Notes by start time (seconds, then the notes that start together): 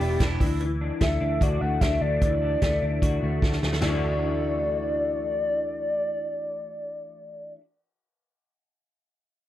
Already playing: E3 D4 G4
0.00 E1 G3 B3 D4 E4, open hi-hat
0.19 E1 E2 E3 G3 B3 D4 E4, kick, snare, closed hi-hat
0.40 D2 E3 D4 E4 F#4, kick, open hi-hat
0.60 E3, closed hi-hat
0.81 D4
1.01 D2 A3 E5, kick, snare, closed hi-hat
1.21 D2 D4
1.41 D2 F#4 D5, kick, closed hi-hat
1.61 D2 A3 F#5
1.81 D2 D4 E5, kick, snare, closed hi-hat
2.01 D2 A3 D5
2.21 D2 E3 D5, kick, closed hi-hat
2.42 D4
2.62 D2 A3, kick, snare, closed hi-hat
2.82 D2 D4
3.02 D2 F#4, kick, closed hi-hat
3.23 D2 A3
3.42 D2 D4, kick, snare
3.52 snare
3.63 D2 A3, snare
3.73 snare
3.81 D2 E3 A3 D5, snare, floor tom, crash
3.86 D4 F#4